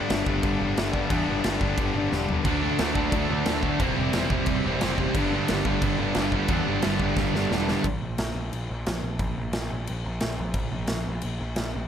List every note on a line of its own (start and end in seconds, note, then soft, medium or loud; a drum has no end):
0.00 1.08 G2 medium
0.00 1.10 D3 loud
0.00 1.10 G3 loud
0.00 1.11 B3 loud
0.00 1.12 D4 loud
0.09 0.22 G1 loud
0.09 0.28 G2 loud
0.09 0.26 D3 loud
0.09 0.27 G3 loud
0.09 snare loud
0.09 crash medium
0.26 0.38 G1 medium
0.26 0.42 G2 medium
0.26 0.43 D3 medium
0.26 0.43 G3 loud
0.26 kick loud
0.43 0.55 G1 loud
0.43 0.59 G2 loud
0.43 0.59 D3 loud
0.43 0.59 G3 medium
0.43 kick loud
0.43 crash medium
0.60 0.73 G1 loud
0.60 0.76 G2 loud
0.60 0.77 D3 loud
0.60 0.77 G3 loud
0.77 1.01 G1 loud
0.77 0.94 G2 loud
0.77 0.93 D3 medium
0.77 0.92 G3 loud
0.77 snare loud
0.77 crash medium
0.93 1.10 G2 medium
0.93 1.10 D3 medium
0.93 1.11 G3 loud
0.93 kick medium
1.10 1.23 E2 loud
1.10 1.28 G2 medium
1.10 1.27 D3 loud
1.10 1.27 G3 loud
1.10 2.45 B3 loud
1.10 2.45 D4 loud
1.10 kick loud
1.10 crash medium
1.28 1.40 G1 medium
1.28 1.43 G2 medium
1.28 1.43 D3 medium
1.28 1.44 G3 loud
1.44 1.57 G1 medium
1.44 1.62 G2 medium
1.44 1.62 D3 loud
1.44 1.61 G3 medium
1.44 snare loud
1.44 crash medium
1.61 1.73 G1 loud
1.61 1.78 G2 medium
1.61 1.78 D3 loud
1.61 1.79 G3 loud
1.61 kick loud
1.78 1.90 G1 loud
1.78 1.96 G2 medium
1.78 1.95 D3 medium
1.78 1.95 G3 loud
1.78 kick loud
1.78 crash medium
1.94 2.07 G1 medium
1.94 2.11 G2 loud
1.94 2.11 D3 loud
1.94 2.12 G3 loud
2.12 2.36 E1 medium
2.12 2.28 G2 medium
2.12 2.28 D3 medium
2.12 2.26 G3 medium
2.12 snare medium
2.28 2.45 G2 medium
2.28 2.43 D3 medium
2.28 2.44 G3 medium
2.28 floor tom loud
2.44 2.69 D2 medium
2.44 2.61 D3 medium
2.44 3.80 F#3 loud
2.44 2.61 A3 medium
2.44 2.60 D4 loud
2.44 kick loud
2.44 crash medium
2.62 2.77 D3 medium
2.62 2.77 A3 medium
2.62 2.78 D4 loud
2.78 2.91 D2 medium
2.78 2.94 D3 medium
2.78 2.94 A3 loud
2.78 2.93 D4 loud
2.78 snare loud
2.78 crash medium
2.94 3.08 D2 medium
2.94 3.11 D3 loud
2.94 3.12 A3 loud
2.94 3.12 D4 loud
2.94 kick loud
3.12 3.25 D2 loud
3.12 3.29 D3 loud
3.12 3.29 A3 medium
3.12 3.28 D4 loud
3.12 kick loud
3.12 crash medium
3.29 3.42 D2 loud
3.29 3.45 D3 medium
3.29 3.45 A3 loud
3.29 3.46 D4 loud
3.46 3.70 D2 loud
3.46 3.62 D3 medium
3.46 3.62 A3 loud
3.46 3.62 D4 loud
3.46 snare loud
3.46 crash medium
3.63 3.79 D3 medium
3.63 3.79 A3 loud
3.63 3.79 D4 medium
3.63 kick medium
3.80 3.92 E1 loud
3.80 3.96 C3 loud
3.80 5.14 E3 medium
3.80 3.97 G3 loud
3.80 3.95 C4 loud
3.80 5.16 E4 loud
3.80 kick loud
3.80 crash medium
3.96 4.09 E1 loud
3.96 4.13 C3 medium
3.96 4.15 G3 medium
3.96 4.14 C4 medium
4.13 4.26 E1 loud
4.13 4.30 C3 loud
4.13 4.30 G3 loud
4.13 4.29 C4 loud
4.13 snare loud
4.13 crash medium
4.30 4.42 E1 loud
4.30 4.46 C3 loud
4.30 4.47 G3 loud
4.30 4.47 C4 loud
4.30 kick loud
4.46 4.59 E1 loud
4.46 4.66 C3 medium
4.46 4.65 G3 loud
4.46 4.64 C4 loud
4.46 kick loud
4.46 crash medium
4.64 4.76 E1 loud
4.64 4.82 C3 medium
4.64 4.83 G3 loud
4.64 4.83 C4 loud
4.81 5.06 F#1 loud
4.81 4.99 C3 medium
4.81 5.00 G3 medium
4.81 4.98 C4 loud
4.81 snare loud
4.81 crash medium
4.98 5.15 C3 medium
4.98 5.17 G3 medium
4.98 5.15 C4 medium
4.98 kick medium
5.15 5.39 G1 loud
5.15 5.35 G2 loud
5.15 5.34 D3 loud
5.15 5.34 G3 loud
5.15 6.50 B3 loud
5.15 6.52 D4 loud
5.15 kick loud
5.15 crash medium
5.34 5.50 G2 medium
5.34 5.50 D3 medium
5.34 5.51 G3 loud
5.48 5.61 G1 loud
5.48 5.67 G2 loud
5.48 5.66 D3 loud
5.48 5.66 G3 loud
5.48 snare loud
5.48 crash medium
5.65 5.77 G1 loud
5.65 5.81 G2 medium
5.65 5.81 D3 loud
5.65 5.82 G3 loud
5.65 kick loud
5.82 5.94 G1 medium
5.82 6.00 G2 medium
5.82 5.99 D3 loud
5.82 5.98 G3 loud
5.82 kick loud
5.82 crash medium
5.98 6.10 G1 loud
5.98 6.16 G2 medium
5.98 6.16 D3 loud
5.98 6.16 G3 loud
6.15 6.39 G1 medium
6.15 6.33 G2 loud
6.15 6.32 D3 loud
6.15 6.32 G3 medium
6.15 snare loud
6.15 crash medium
6.32 6.48 G2 medium
6.32 6.49 D3 medium
6.32 6.49 G3 loud
6.32 kick medium
6.48 6.61 E2 loud
6.48 6.67 G2 medium
6.48 6.66 D3 medium
6.48 6.66 G3 loud
6.48 7.85 B3 loud
6.48 kick loud
6.48 crash medium
6.52 7.85 D4 loud
6.67 6.79 G1 medium
6.67 6.82 G2 medium
6.67 6.83 D3 loud
6.67 6.83 G3 loud
6.82 6.97 G1 medium
6.82 7.01 G2 medium
6.82 7.01 D3 medium
6.82 7.00 G3 loud
6.82 snare loud
6.82 crash medium
7.00 7.12 G1 loud
7.00 7.17 G2 medium
7.00 7.17 D3 loud
7.00 7.17 G3 loud
7.00 kick medium
7.17 7.29 G1 loud
7.17 7.34 G2 medium
7.17 7.34 D3 medium
7.17 7.33 G3 loud
7.17 kick loud
7.17 snare medium
7.34 7.46 G1 medium
7.34 7.51 G2 loud
7.34 7.52 D3 loud
7.34 7.52 G3 loud
7.34 snare medium
7.51 7.74 E1 medium
7.51 7.69 G2 medium
7.51 7.68 D3 loud
7.51 7.68 G3 loud
7.51 snare loud
7.68 7.85 G2 medium
7.68 7.85 D3 medium
7.68 7.85 G3 medium
7.68 snare medium
7.84 8.01 A#1 medium
7.84 kick loud
7.84 crash medium
8.02 8.18 A#1 medium
8.18 8.34 A#1 medium
8.18 snare loud
8.18 crash medium
8.35 8.51 A#1 medium
8.53 8.69 A#1 medium
8.53 crash medium
8.70 8.86 A#1 medium
8.86 9.02 A#1 medium
8.86 snare loud
8.86 crash medium
9.03 9.19 A#1 medium
9.19 9.36 A#1 medium
9.19 kick loud
9.19 crash medium
9.37 9.53 A#1 medium
9.53 9.70 A#1 medium
9.53 snare loud
9.53 crash medium
9.72 9.88 A#1 medium
9.87 10.05 A#1 medium
9.87 crash medium
10.06 10.21 A#1 medium
10.20 10.38 A#1 medium
10.20 snare loud
10.20 crash medium
10.39 10.54 A#1 medium
10.54 10.71 A#1 medium
10.54 kick loud
10.54 crash medium
10.72 10.88 A#1 medium
10.87 11.05 A#1 medium
10.87 snare loud
10.87 crash medium
11.07 11.23 A#1 medium
11.21 11.40 A#1 medium
11.21 crash medium
11.41 11.57 A#1 medium
11.56 11.74 A#1 medium
11.56 snare loud
11.56 crash medium
11.75 11.88 A#1 medium